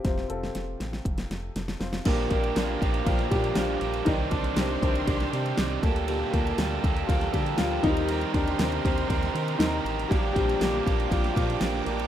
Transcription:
Already playing: grand piano C3 C4 F4 G4 A4
0.04 analog synth bass F1, grand piano C3 C4 F4 C5, kick, snare, closed hi-hat
0.18 snare
0.28 analog synth bass F1, grand piano C4 F4 A4, closed hi-hat
0.43 snare
0.55 analog synth bass F1, snare, closed hi-hat
0.80 analog synth bass A1, snare, closed hi-hat
0.93 snare
1.05 analog synth bass F1, kick, closed hi-hat
1.18 snare, closed hi-hat
1.30 analog synth bass F1, snare, closed hi-hat
1.55 analog synth bass F1, snare, closed hi-hat
1.68 snare
1.79 analog synth bass F1, grand piano C4 F4 C5, snare, open hi-hat
1.93 snare
2.05 analog synth bass A#1, overdriven electric guitar A#2 D3 F3 A#3 D4 G4, grand piano A#2 G3 A#3 C4 D4, string section G4 D5 F5 A#5, kick, crash, ride
2.29 analog synth bass A#1, grand piano A#2 A#3, overdriven electric guitar A#3 D4 G4, kick, ride
2.34 overdriven electric guitar F3
2.44 ride
2.56 analog synth bass A#1, overdriven electric guitar A#2 D3 F3 A#3 D4 G4, snare, ride
2.81 analog synth bass A#1, overdriven electric guitar F3 A#3 D4 G4, kick, ride
2.94 ride
3.04 analog synth bass A#1, overdriven electric guitar F3 A#3, grand piano F3 F4, kick, ride
3.08 overdriven electric guitar D4 G4
3.19 snare, ride
3.30 analog synth bass A#2, grand piano G3 G4, overdriven electric guitar A#3 D4 G4, kick, ride
3.35 overdriven electric guitar F3
3.44 ride
3.55 analog synth bass A#1, overdriven electric guitar A#2 D3 F3 A#3 D4 G4, grand piano F3 F4, snare, ride
3.80 analog synth bass A#1, overdriven electric guitar F3 A#3 D4 G4, ride
3.94 ride
4.05 analog synth bass C2, overdriven electric guitar C3 D#3 G3 C4 D4 G4, grand piano D#3 D#4, string section C5 C6, kick, ride
4.31 analog synth bass C2, grand piano D3 D4, overdriven electric guitar C4 D4 G4, kick, ride
4.35 overdriven electric guitar G3
4.44 ride
4.56 analog synth bass C2, overdriven electric guitar C3 D#3 G3 C4 D4 G4, grand piano C3 C4, snare, ride
4.82 analog synth bass C2, grand piano C3 D#3 C4 D4, overdriven electric guitar G3 C4 D4 G4, kick, ride
4.95 ride
5.07 analog synth bass C2, overdriven electric guitar G3 C4 D4 G4, kick, ride
5.20 snare, ride
5.32 analog synth bass C3, overdriven electric guitar G3 C4 D4 G4, ride
5.46 ride
5.57 analog synth bass C2, overdriven electric guitar C3 D#3 G3 C4 D4 G4, snare, ride
5.82 analog synth bass D2, grand piano G3 A3 A#3, overdriven electric guitar A#3 G4 A4, string section A5 A#5, kick, ride
5.96 ride
6.07 grand piano A#2 A#3, overdriven electric guitar D3 G3 A#3 G4 A4, ride
6.31 analog synth bass D2, grand piano A#2 A#3, overdriven electric guitar G4 A4, kick, ride
6.36 overdriven electric guitar A#3
6.47 ride
6.58 analog synth bass D2, overdriven electric guitar D3 G3 A#3 G4 A4, grand piano G3 A3 A#3, snare, ride
6.84 analog synth bass D2, overdriven electric guitar A#3 G4 A4, kick, ride
6.97 ride
7.07 analog synth bass D2, grand piano F3 F4, overdriven electric guitar G3 A#3 G4, kick, ride
7.12 overdriven electric guitar A4
7.21 snare, ride
7.32 analog synth bass D3, grand piano G3 G4, overdriven electric guitar A#3 G4 A4, kick, ride
7.46 ride
7.58 analog synth bass D2, overdriven electric guitar D3 G3 A#3 G4 A4, grand piano F3 F4, snare, ride
7.83 analog synth bass D#2, grand piano D#3 F3 G3 C4 D#4, overdriven electric guitar G4 A#4, string section D#5 C6, kick, ride
7.87 overdriven electric guitar C4
7.97 ride
8.08 overdriven electric guitar D#3 G3 C4 G4 A#4, ride
8.21 ride
8.33 analog synth bass D#2, grand piano D3 D4, overdriven electric guitar C4 G4 A#4, kick, ride
8.48 ride
8.59 analog synth bass D#2, grand piano C3 C4, overdriven electric guitar D#3 G3 C4 G4 A#4, snare, ride
8.72 ride
8.83 analog synth bass D#2, grand piano C3 C4, overdriven electric guitar C4 G4 A#4, kick, ride
8.98 ride
9.08 analog synth bass D#2, overdriven electric guitar G3 C4 G4 A#4, kick, ride
9.23 snare, ride
9.33 analog synth bass D#3, overdriven electric guitar C4 G4 A#4, ride
9.48 ride
9.58 analog synth bass D#2, overdriven electric guitar D#3 G3 C4 G4 A#4, grand piano D#3 D#4, snare, ride
9.85 analog synth bass A1, overdriven electric guitar C4 G4 A#4, ride
10.00 ride
10.08 analog synth bass A#1, overdriven electric guitar A#2 D3 F3 A#3 D4 G4, grand piano G3 G4, string section F5 D6, kick, ride
10.33 analog synth bass A#1, grand piano D3 G3 C4 G4, overdriven electric guitar A#3 D4 G4, kick, ride
10.38 overdriven electric guitar F3
10.49 ride
10.60 analog synth bass A#1, overdriven electric guitar A#2 D3 F3 A#3 D4 G4, snare, ride
10.85 analog synth bass A#1, overdriven electric guitar F3 A#3 D4 G4, kick, ride
11.00 ride
11.08 analog synth bass A#1, grand piano D3 G3 C4 F4, overdriven electric guitar F3 A#3, kick, ride
11.12 grand piano F3, overdriven electric guitar D4 G4
11.24 snare, ride
11.33 analog synth bass A#2, overdriven electric guitar D4 G4, grand piano F4, kick
11.37 grand piano F3, overdriven electric guitar F3 A#3, ride
11.50 ride
11.61 analog synth bass A#1, overdriven electric guitar A#2 D3 F3 A#3 D4 G4, snare, ride
11.83 analog synth bass A#1, grand piano A#2 A#3, overdriven electric guitar G4, ride
11.87 overdriven electric guitar F3 A#3 D4
12.00 ride

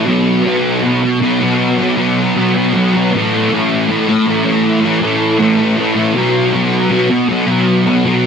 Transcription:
0.05 distorted electric guitar B2 F#3 B3
0.43 distorted electric guitar B2 F#3 B3
0.81 distorted electric guitar B2 F#3 B3
1.02 muted distorted electric guitar stroke
1.20 distorted electric guitar B2 F#3 B3
1.40 distorted electric guitar F#3 B3
1.78 distorted electric guitar F#3 B3
1.96 distorted electric guitar B2 F#3 B3
2.36 distorted electric guitar B2 F#3 B3
2.54 distorted electric guitar F#3 B3
2.73 distorted electric guitar B2 F#3 B3
2.93 distorted electric guitar F#3 B3
3.12 distorted electric guitar A2 E3 A3
3.50 distorted electric guitar A2 E3 A3
3.88 distorted electric guitar A2 E3 A3
4.08 muted distorted electric guitar stroke
4.27 distorted electric guitar A2 E3 A3
4.44 distorted electric guitar E3 A3
4.81 distorted electric guitar A3
4.85 distorted electric guitar E3
5.00 distorted electric guitar A2 E3 A3
5.39 distorted electric guitar A2 E3 A3
5.57 distorted electric guitar E3 A3
5.77 distorted electric guitar A2 E3 A3
5.95 distorted electric guitar E3 A3
6.14 distorted electric guitar B2 F#3 B3
6.53 distorted electric guitar B2 F#3 B3
6.89 distorted electric guitar B2 F#3 B3
7.10 muted distorted electric guitar stroke
7.28 distorted electric guitar B2 F#3 B3
7.47 distorted electric guitar F#3 B3
7.86 distorted electric guitar F#3 B3
8.04 distorted electric guitar B2 F#3 B3

